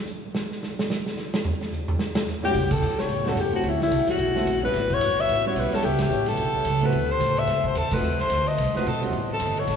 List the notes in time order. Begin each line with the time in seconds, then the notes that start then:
0.07 hi-hat pedal
0.35 snare
0.51 snare
0.63 snare, hi-hat pedal
0.79 snare
0.90 snare
1.06 snare
1.17 snare, hi-hat pedal
1.34 snare
1.45 floor tom
1.61 snare
1.72 floor tom, hi-hat pedal
1.88 floor tom
1.99 snare
2.15 snare
2.27 snare, hi-hat pedal
2.42 A2 G3 B3 C#4 F#4 G4, snare
2.54 C#2, kick, crash
2.71 A4, kick, crash
2.81 E2, hi-hat pedal
2.97 C#5, muted upright bass stroke, snare
3.08 A2, ride
3.24 G3 B3 C#4 E4 F#4, snare
3.29 A4
3.36 F#2, hi-hat pedal, ride
3.40 G4
3.52 A3 B3 C4 E4 F#4, muted upright bass stroke, ride
3.63 D2, ride
3.69 E4
3.81 E4, snare
3.91 C2, hi-hat pedal, ride
4.07 F#4, muted upright bass stroke, snare, ride
4.17 B1, ride
4.35 A3 B3 C4 E4 F#4, snare
4.45 A#1, hi-hat pedal, ride
4.62 G3 B3 C#4 E4 F#4 B4
4.73 A1, snare, ride
4.90 C#5, kick
5.01 G1, hi-hat pedal, ride
5.17 E5, ride
5.29 A1, ride
5.45 G3 B3 C#4 E4 F#4 C#5
5.56 B1 B4, hi-hat pedal, ride
5.72 G3 B3 C#4 E4 G4 A4, muted upright bass stroke, snare, ride
5.83 C#2 G4, ride
5.99 G4, snare, ride
6.10 A1, hi-hat pedal
6.26 A4, snare, ride
6.37 B1, ride
6.65 C#2, hi-hat pedal, ride
6.81 A3 B3 C4 E4 F#4, ride
6.86 B4
6.92 D2, ride
7.12 C5
7.20 A2, hi-hat pedal, ride
7.37 E5, ride
7.47 F#2, snare, ride
7.64 C5, kick
7.75 E2 A4, hi-hat pedal, ride
7.91 A3 C4 D#4 F4 F#4 B4, kick, crash
8.01 D#2
8.19 C5, snare
8.30 D2, hi-hat pedal, ride
8.46 D#5, ride
8.58 C2, ride
8.74 A3 C4 D#4 F4 F#4 B4, muted upright bass stroke, snare
8.85 B1 A4, hi-hat pedal, ride
9.01 G3 B3 C#4 E4 F#4, ride
9.12 A1, ride
9.33 A4
9.39 G1, hi-hat pedal, ride
9.57 C#5, ride
9.67 A1, snare, ride